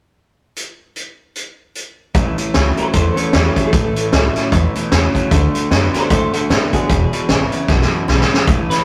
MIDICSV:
0, 0, Header, 1, 7, 480
1, 0, Start_track
1, 0, Key_signature, 3, "major"
1, 0, Tempo, 395257
1, 691, Time_signature, 4, 2, 24, 8
1, 10737, End_track
2, 0, Start_track
2, 0, Title_t, "Clean electric guitar"
2, 0, Program_c, 0, 27
2, 3373, Note_on_c, 0, 69, 70
2, 3379, Note_on_c, 0, 72, 76
2, 3556, Note_off_c, 0, 69, 0
2, 3564, Note_off_c, 0, 72, 0
2, 3571, Note_on_c, 0, 69, 72
2, 3579, Note_on_c, 0, 72, 78
2, 3828, Note_off_c, 0, 69, 0
2, 3836, Note_on_c, 0, 61, 69
2, 3843, Note_on_c, 0, 69, 72
2, 3848, Note_off_c, 0, 72, 0
2, 4031, Note_off_c, 0, 61, 0
2, 4033, Note_off_c, 0, 69, 0
2, 4042, Note_on_c, 0, 61, 72
2, 4053, Note_on_c, 0, 69, 69
2, 4310, Note_off_c, 0, 61, 0
2, 4323, Note_off_c, 0, 69, 0
2, 4341, Note_on_c, 0, 69, 92
2, 5269, Note_off_c, 0, 69, 0
2, 7208, Note_on_c, 0, 69, 75
2, 7217, Note_on_c, 0, 72, 81
2, 7397, Note_off_c, 0, 69, 0
2, 7408, Note_off_c, 0, 72, 0
2, 7411, Note_on_c, 0, 69, 72
2, 7425, Note_on_c, 0, 72, 88
2, 7673, Note_off_c, 0, 69, 0
2, 7688, Note_on_c, 0, 66, 70
2, 7692, Note_off_c, 0, 72, 0
2, 7698, Note_on_c, 0, 69, 65
2, 7878, Note_off_c, 0, 66, 0
2, 7888, Note_off_c, 0, 69, 0
2, 7896, Note_on_c, 0, 66, 75
2, 7905, Note_on_c, 0, 69, 74
2, 8156, Note_off_c, 0, 66, 0
2, 8169, Note_off_c, 0, 69, 0
2, 8177, Note_on_c, 0, 68, 85
2, 9106, Note_off_c, 0, 68, 0
2, 10566, Note_on_c, 0, 71, 88
2, 10737, Note_off_c, 0, 71, 0
2, 10737, End_track
3, 0, Start_track
3, 0, Title_t, "Steel-string acoustic guitar"
3, 0, Program_c, 1, 25
3, 2613, Note_on_c, 1, 45, 76
3, 3088, Note_on_c, 1, 52, 57
3, 3096, Note_on_c, 1, 57, 58
3, 3105, Note_on_c, 1, 61, 56
3, 3108, Note_on_c, 1, 64, 59
3, 3534, Note_off_c, 1, 45, 0
3, 3552, Note_off_c, 1, 52, 0
3, 3556, Note_off_c, 1, 57, 0
3, 3560, Note_off_c, 1, 61, 0
3, 3561, Note_off_c, 1, 64, 0
3, 3570, Note_on_c, 1, 40, 77
3, 4055, Note_on_c, 1, 52, 64
3, 4065, Note_on_c, 1, 57, 72
3, 4066, Note_on_c, 1, 61, 65
3, 4073, Note_on_c, 1, 64, 71
3, 4493, Note_off_c, 1, 40, 0
3, 4515, Note_off_c, 1, 52, 0
3, 4520, Note_off_c, 1, 57, 0
3, 4521, Note_off_c, 1, 61, 0
3, 4524, Note_off_c, 1, 64, 0
3, 4540, Note_on_c, 1, 45, 85
3, 5011, Note_on_c, 1, 52, 56
3, 5021, Note_on_c, 1, 57, 59
3, 5023, Note_on_c, 1, 61, 67
3, 5030, Note_on_c, 1, 64, 63
3, 5282, Note_off_c, 1, 52, 0
3, 5282, Note_off_c, 1, 64, 0
3, 5287, Note_off_c, 1, 57, 0
3, 5288, Note_off_c, 1, 61, 0
3, 5297, Note_on_c, 1, 64, 62
3, 5310, Note_on_c, 1, 61, 54
3, 5458, Note_off_c, 1, 45, 0
3, 5488, Note_off_c, 1, 64, 0
3, 5495, Note_off_c, 1, 61, 0
3, 5497, Note_on_c, 1, 47, 84
3, 5956, Note_off_c, 1, 47, 0
3, 5983, Note_on_c, 1, 49, 89
3, 6439, Note_off_c, 1, 49, 0
3, 6460, Note_on_c, 1, 50, 90
3, 6926, Note_off_c, 1, 50, 0
3, 6940, Note_on_c, 1, 50, 56
3, 6948, Note_on_c, 1, 57, 63
3, 6950, Note_on_c, 1, 62, 65
3, 6955, Note_on_c, 1, 66, 63
3, 7201, Note_off_c, 1, 66, 0
3, 7206, Note_off_c, 1, 50, 0
3, 7210, Note_off_c, 1, 57, 0
3, 7211, Note_off_c, 1, 62, 0
3, 7215, Note_on_c, 1, 66, 66
3, 7233, Note_on_c, 1, 62, 45
3, 7407, Note_off_c, 1, 66, 0
3, 7416, Note_off_c, 1, 62, 0
3, 7419, Note_on_c, 1, 45, 90
3, 7888, Note_on_c, 1, 50, 63
3, 7900, Note_on_c, 1, 57, 65
3, 7906, Note_on_c, 1, 62, 59
3, 7907, Note_on_c, 1, 66, 65
3, 8160, Note_off_c, 1, 50, 0
3, 8161, Note_off_c, 1, 66, 0
3, 8166, Note_off_c, 1, 57, 0
3, 8169, Note_off_c, 1, 62, 0
3, 8176, Note_on_c, 1, 66, 53
3, 8191, Note_on_c, 1, 62, 53
3, 8336, Note_off_c, 1, 45, 0
3, 8367, Note_off_c, 1, 66, 0
3, 8374, Note_on_c, 1, 40, 76
3, 8375, Note_off_c, 1, 62, 0
3, 8856, Note_on_c, 1, 50, 53
3, 8866, Note_on_c, 1, 56, 60
3, 8870, Note_on_c, 1, 59, 56
3, 8877, Note_on_c, 1, 64, 60
3, 9123, Note_off_c, 1, 50, 0
3, 9124, Note_off_c, 1, 64, 0
3, 9129, Note_off_c, 1, 56, 0
3, 9130, Note_off_c, 1, 59, 0
3, 9138, Note_on_c, 1, 64, 58
3, 9155, Note_on_c, 1, 59, 48
3, 9293, Note_off_c, 1, 40, 0
3, 9328, Note_off_c, 1, 64, 0
3, 9336, Note_off_c, 1, 59, 0
3, 9343, Note_on_c, 1, 42, 84
3, 9798, Note_off_c, 1, 42, 0
3, 9813, Note_on_c, 1, 44, 88
3, 10272, Note_off_c, 1, 44, 0
3, 10293, Note_on_c, 1, 45, 84
3, 10737, Note_off_c, 1, 45, 0
3, 10737, End_track
4, 0, Start_track
4, 0, Title_t, "Clean electric guitar"
4, 0, Program_c, 2, 27
4, 2608, Note_on_c, 2, 45, 83
4, 2614, Note_on_c, 2, 52, 94
4, 2863, Note_off_c, 2, 45, 0
4, 2866, Note_off_c, 2, 52, 0
4, 2892, Note_on_c, 2, 45, 68
4, 2896, Note_on_c, 2, 52, 74
4, 3073, Note_off_c, 2, 45, 0
4, 3075, Note_off_c, 2, 52, 0
4, 3089, Note_on_c, 2, 45, 72
4, 3097, Note_on_c, 2, 54, 74
4, 3343, Note_off_c, 2, 45, 0
4, 3348, Note_off_c, 2, 54, 0
4, 3368, Note_on_c, 2, 45, 74
4, 3376, Note_on_c, 2, 54, 73
4, 3551, Note_off_c, 2, 45, 0
4, 3555, Note_off_c, 2, 54, 0
4, 3566, Note_on_c, 2, 45, 83
4, 3573, Note_on_c, 2, 52, 89
4, 3822, Note_off_c, 2, 45, 0
4, 3826, Note_off_c, 2, 52, 0
4, 3848, Note_on_c, 2, 45, 74
4, 3854, Note_on_c, 2, 52, 82
4, 4032, Note_off_c, 2, 45, 0
4, 4034, Note_off_c, 2, 52, 0
4, 4052, Note_on_c, 2, 45, 78
4, 4059, Note_on_c, 2, 54, 82
4, 4305, Note_off_c, 2, 45, 0
4, 4309, Note_off_c, 2, 54, 0
4, 4334, Note_on_c, 2, 45, 68
4, 4341, Note_on_c, 2, 54, 82
4, 4515, Note_off_c, 2, 45, 0
4, 4518, Note_off_c, 2, 54, 0
4, 4533, Note_on_c, 2, 45, 83
4, 4542, Note_on_c, 2, 52, 88
4, 4786, Note_off_c, 2, 45, 0
4, 4790, Note_off_c, 2, 52, 0
4, 4812, Note_on_c, 2, 45, 76
4, 4817, Note_on_c, 2, 52, 77
4, 4994, Note_off_c, 2, 45, 0
4, 4996, Note_off_c, 2, 52, 0
4, 5011, Note_on_c, 2, 45, 82
4, 5018, Note_on_c, 2, 54, 85
4, 5265, Note_off_c, 2, 45, 0
4, 5268, Note_off_c, 2, 54, 0
4, 5294, Note_on_c, 2, 45, 79
4, 5301, Note_on_c, 2, 54, 75
4, 5475, Note_off_c, 2, 45, 0
4, 5478, Note_off_c, 2, 54, 0
4, 5497, Note_on_c, 2, 45, 79
4, 5501, Note_on_c, 2, 52, 86
4, 5748, Note_off_c, 2, 45, 0
4, 5750, Note_off_c, 2, 52, 0
4, 5776, Note_on_c, 2, 45, 85
4, 5785, Note_on_c, 2, 52, 90
4, 5956, Note_off_c, 2, 45, 0
4, 5960, Note_off_c, 2, 52, 0
4, 5974, Note_on_c, 2, 45, 91
4, 5982, Note_on_c, 2, 54, 85
4, 6227, Note_off_c, 2, 45, 0
4, 6230, Note_off_c, 2, 54, 0
4, 6252, Note_on_c, 2, 45, 80
4, 6261, Note_on_c, 2, 54, 84
4, 6434, Note_off_c, 2, 45, 0
4, 6438, Note_off_c, 2, 54, 0
4, 6454, Note_on_c, 2, 50, 83
4, 6461, Note_on_c, 2, 57, 87
4, 6707, Note_off_c, 2, 50, 0
4, 6710, Note_off_c, 2, 57, 0
4, 6733, Note_on_c, 2, 50, 75
4, 6738, Note_on_c, 2, 57, 83
4, 6914, Note_off_c, 2, 50, 0
4, 6917, Note_off_c, 2, 57, 0
4, 6928, Note_on_c, 2, 50, 84
4, 6932, Note_on_c, 2, 59, 94
4, 7183, Note_off_c, 2, 50, 0
4, 7185, Note_off_c, 2, 59, 0
4, 7207, Note_on_c, 2, 50, 81
4, 7214, Note_on_c, 2, 59, 82
4, 7391, Note_off_c, 2, 50, 0
4, 7394, Note_off_c, 2, 59, 0
4, 7409, Note_on_c, 2, 50, 75
4, 7417, Note_on_c, 2, 57, 80
4, 7664, Note_off_c, 2, 50, 0
4, 7668, Note_off_c, 2, 57, 0
4, 7692, Note_on_c, 2, 50, 88
4, 7700, Note_on_c, 2, 57, 91
4, 7873, Note_off_c, 2, 50, 0
4, 7878, Note_off_c, 2, 57, 0
4, 7895, Note_on_c, 2, 50, 74
4, 7900, Note_on_c, 2, 59, 91
4, 8147, Note_off_c, 2, 50, 0
4, 8149, Note_off_c, 2, 59, 0
4, 8173, Note_on_c, 2, 50, 75
4, 8180, Note_on_c, 2, 59, 82
4, 8354, Note_off_c, 2, 50, 0
4, 8357, Note_off_c, 2, 59, 0
4, 8375, Note_on_c, 2, 40, 87
4, 8381, Note_on_c, 2, 47, 95
4, 8626, Note_off_c, 2, 40, 0
4, 8629, Note_off_c, 2, 47, 0
4, 8656, Note_on_c, 2, 40, 71
4, 8663, Note_on_c, 2, 47, 83
4, 8835, Note_off_c, 2, 40, 0
4, 8839, Note_off_c, 2, 47, 0
4, 8855, Note_on_c, 2, 40, 80
4, 8860, Note_on_c, 2, 49, 81
4, 9106, Note_off_c, 2, 40, 0
4, 9108, Note_off_c, 2, 49, 0
4, 9134, Note_on_c, 2, 40, 77
4, 9142, Note_on_c, 2, 49, 77
4, 9314, Note_off_c, 2, 40, 0
4, 9318, Note_off_c, 2, 49, 0
4, 9338, Note_on_c, 2, 40, 76
4, 9346, Note_on_c, 2, 47, 86
4, 9588, Note_off_c, 2, 40, 0
4, 9591, Note_off_c, 2, 47, 0
4, 9618, Note_on_c, 2, 40, 86
4, 9626, Note_on_c, 2, 47, 80
4, 9796, Note_off_c, 2, 40, 0
4, 9799, Note_off_c, 2, 47, 0
4, 9817, Note_on_c, 2, 40, 71
4, 9823, Note_on_c, 2, 49, 84
4, 10067, Note_off_c, 2, 40, 0
4, 10070, Note_off_c, 2, 49, 0
4, 10102, Note_on_c, 2, 40, 78
4, 10109, Note_on_c, 2, 49, 81
4, 10277, Note_off_c, 2, 40, 0
4, 10281, Note_off_c, 2, 49, 0
4, 10298, Note_on_c, 2, 45, 80
4, 10306, Note_on_c, 2, 52, 90
4, 10735, Note_off_c, 2, 45, 0
4, 10737, Note_off_c, 2, 52, 0
4, 10737, End_track
5, 0, Start_track
5, 0, Title_t, "Upright bass"
5, 0, Program_c, 3, 32
5, 2605, Note_on_c, 3, 33, 88
5, 2813, Note_off_c, 3, 33, 0
5, 3095, Note_on_c, 3, 37, 92
5, 3299, Note_off_c, 3, 37, 0
5, 3566, Note_on_c, 3, 40, 89
5, 3774, Note_off_c, 3, 40, 0
5, 4056, Note_on_c, 3, 40, 94
5, 4260, Note_off_c, 3, 40, 0
5, 4526, Note_on_c, 3, 33, 86
5, 4734, Note_off_c, 3, 33, 0
5, 5008, Note_on_c, 3, 37, 89
5, 5215, Note_off_c, 3, 37, 0
5, 5489, Note_on_c, 3, 40, 83
5, 5696, Note_off_c, 3, 40, 0
5, 5970, Note_on_c, 3, 40, 93
5, 6177, Note_off_c, 3, 40, 0
5, 6451, Note_on_c, 3, 38, 92
5, 6657, Note_off_c, 3, 38, 0
5, 6933, Note_on_c, 3, 42, 93
5, 7138, Note_off_c, 3, 42, 0
5, 7409, Note_on_c, 3, 45, 91
5, 7616, Note_off_c, 3, 45, 0
5, 7892, Note_on_c, 3, 45, 91
5, 8097, Note_off_c, 3, 45, 0
5, 8370, Note_on_c, 3, 28, 93
5, 8576, Note_off_c, 3, 28, 0
5, 8850, Note_on_c, 3, 32, 90
5, 9056, Note_off_c, 3, 32, 0
5, 9328, Note_on_c, 3, 35, 79
5, 9534, Note_off_c, 3, 35, 0
5, 9813, Note_on_c, 3, 35, 90
5, 10017, Note_off_c, 3, 35, 0
5, 10289, Note_on_c, 3, 33, 96
5, 10515, Note_off_c, 3, 33, 0
5, 10737, End_track
6, 0, Start_track
6, 0, Title_t, "Muted upright bass strokes"
6, 2892, Note_on_c, 9, 29, 73
6, 3013, Note_off_c, 9, 29, 0
6, 3374, Note_on_c, 9, 29, 66
6, 3496, Note_off_c, 9, 29, 0
6, 3854, Note_on_c, 9, 29, 64
6, 3975, Note_off_c, 9, 29, 0
6, 4810, Note_on_c, 9, 29, 74
6, 4931, Note_off_c, 9, 29, 0
6, 5291, Note_on_c, 9, 29, 75
6, 5412, Note_off_c, 9, 29, 0
6, 5765, Note_on_c, 9, 29, 63
6, 5886, Note_off_c, 9, 29, 0
6, 6248, Note_on_c, 9, 29, 71
6, 6370, Note_off_c, 9, 29, 0
6, 6729, Note_on_c, 9, 29, 73
6, 6850, Note_off_c, 9, 29, 0
6, 7219, Note_on_c, 9, 29, 74
6, 7340, Note_off_c, 9, 29, 0
6, 7694, Note_on_c, 9, 29, 64
6, 7816, Note_off_c, 9, 29, 0
6, 8169, Note_on_c, 9, 29, 66
6, 8290, Note_off_c, 9, 29, 0
6, 10093, Note_on_c, 9, 29, 69
6, 10215, Note_off_c, 9, 29, 0
6, 10567, Note_on_c, 9, 29, 74
6, 10689, Note_off_c, 9, 29, 0
6, 10737, End_track
7, 0, Start_track
7, 0, Title_t, "Drums"
7, 685, Note_on_c, 9, 42, 62
7, 806, Note_off_c, 9, 42, 0
7, 1163, Note_on_c, 9, 42, 55
7, 1284, Note_off_c, 9, 42, 0
7, 1645, Note_on_c, 9, 42, 53
7, 1767, Note_off_c, 9, 42, 0
7, 2128, Note_on_c, 9, 42, 55
7, 2249, Note_off_c, 9, 42, 0
7, 2607, Note_on_c, 9, 36, 114
7, 2607, Note_on_c, 9, 42, 78
7, 2728, Note_off_c, 9, 42, 0
7, 2729, Note_off_c, 9, 36, 0
7, 2889, Note_on_c, 9, 42, 67
7, 3010, Note_off_c, 9, 42, 0
7, 3086, Note_on_c, 9, 38, 101
7, 3086, Note_on_c, 9, 42, 81
7, 3208, Note_off_c, 9, 38, 0
7, 3208, Note_off_c, 9, 42, 0
7, 3366, Note_on_c, 9, 42, 56
7, 3488, Note_off_c, 9, 42, 0
7, 3562, Note_on_c, 9, 42, 88
7, 3568, Note_on_c, 9, 36, 105
7, 3684, Note_off_c, 9, 42, 0
7, 3689, Note_off_c, 9, 36, 0
7, 3850, Note_on_c, 9, 42, 67
7, 3971, Note_off_c, 9, 42, 0
7, 4045, Note_on_c, 9, 38, 101
7, 4045, Note_on_c, 9, 42, 79
7, 4166, Note_off_c, 9, 38, 0
7, 4166, Note_off_c, 9, 42, 0
7, 4325, Note_on_c, 9, 42, 63
7, 4328, Note_on_c, 9, 36, 76
7, 4447, Note_off_c, 9, 42, 0
7, 4449, Note_off_c, 9, 36, 0
7, 4526, Note_on_c, 9, 42, 88
7, 4528, Note_on_c, 9, 36, 109
7, 4647, Note_off_c, 9, 42, 0
7, 4650, Note_off_c, 9, 36, 0
7, 4811, Note_on_c, 9, 42, 67
7, 4932, Note_off_c, 9, 42, 0
7, 5010, Note_on_c, 9, 38, 103
7, 5010, Note_on_c, 9, 42, 75
7, 5131, Note_off_c, 9, 38, 0
7, 5131, Note_off_c, 9, 42, 0
7, 5290, Note_on_c, 9, 38, 28
7, 5290, Note_on_c, 9, 42, 56
7, 5412, Note_off_c, 9, 38, 0
7, 5412, Note_off_c, 9, 42, 0
7, 5491, Note_on_c, 9, 36, 109
7, 5494, Note_on_c, 9, 42, 84
7, 5612, Note_off_c, 9, 36, 0
7, 5615, Note_off_c, 9, 42, 0
7, 5773, Note_on_c, 9, 42, 58
7, 5894, Note_off_c, 9, 42, 0
7, 5971, Note_on_c, 9, 38, 113
7, 5971, Note_on_c, 9, 42, 81
7, 6093, Note_off_c, 9, 38, 0
7, 6093, Note_off_c, 9, 42, 0
7, 6252, Note_on_c, 9, 36, 73
7, 6255, Note_on_c, 9, 42, 56
7, 6373, Note_off_c, 9, 36, 0
7, 6377, Note_off_c, 9, 42, 0
7, 6452, Note_on_c, 9, 36, 117
7, 6452, Note_on_c, 9, 42, 84
7, 6574, Note_off_c, 9, 36, 0
7, 6574, Note_off_c, 9, 42, 0
7, 6736, Note_on_c, 9, 42, 62
7, 6858, Note_off_c, 9, 42, 0
7, 6938, Note_on_c, 9, 38, 100
7, 6938, Note_on_c, 9, 42, 84
7, 7059, Note_off_c, 9, 38, 0
7, 7059, Note_off_c, 9, 42, 0
7, 7217, Note_on_c, 9, 38, 32
7, 7217, Note_on_c, 9, 42, 62
7, 7339, Note_off_c, 9, 38, 0
7, 7339, Note_off_c, 9, 42, 0
7, 7412, Note_on_c, 9, 42, 87
7, 7413, Note_on_c, 9, 36, 116
7, 7533, Note_off_c, 9, 42, 0
7, 7534, Note_off_c, 9, 36, 0
7, 7692, Note_on_c, 9, 42, 70
7, 7814, Note_off_c, 9, 42, 0
7, 7898, Note_on_c, 9, 38, 108
7, 7898, Note_on_c, 9, 42, 84
7, 8019, Note_off_c, 9, 38, 0
7, 8019, Note_off_c, 9, 42, 0
7, 8174, Note_on_c, 9, 36, 77
7, 8175, Note_on_c, 9, 42, 68
7, 8295, Note_off_c, 9, 36, 0
7, 8296, Note_off_c, 9, 42, 0
7, 8374, Note_on_c, 9, 36, 121
7, 8375, Note_on_c, 9, 42, 88
7, 8496, Note_off_c, 9, 36, 0
7, 8497, Note_off_c, 9, 42, 0
7, 8657, Note_on_c, 9, 42, 73
7, 8778, Note_off_c, 9, 42, 0
7, 8850, Note_on_c, 9, 38, 103
7, 8850, Note_on_c, 9, 42, 81
7, 8972, Note_off_c, 9, 38, 0
7, 8972, Note_off_c, 9, 42, 0
7, 9131, Note_on_c, 9, 42, 56
7, 9253, Note_off_c, 9, 42, 0
7, 9331, Note_on_c, 9, 38, 60
7, 9332, Note_on_c, 9, 36, 105
7, 9452, Note_off_c, 9, 38, 0
7, 9453, Note_off_c, 9, 36, 0
7, 9492, Note_on_c, 9, 38, 57
7, 9614, Note_off_c, 9, 38, 0
7, 9815, Note_on_c, 9, 38, 73
7, 9937, Note_off_c, 9, 38, 0
7, 9973, Note_on_c, 9, 38, 78
7, 10095, Note_off_c, 9, 38, 0
7, 10130, Note_on_c, 9, 38, 86
7, 10252, Note_off_c, 9, 38, 0
7, 10292, Note_on_c, 9, 36, 118
7, 10292, Note_on_c, 9, 42, 79
7, 10414, Note_off_c, 9, 36, 0
7, 10414, Note_off_c, 9, 42, 0
7, 10575, Note_on_c, 9, 38, 33
7, 10575, Note_on_c, 9, 42, 68
7, 10696, Note_off_c, 9, 38, 0
7, 10696, Note_off_c, 9, 42, 0
7, 10737, End_track
0, 0, End_of_file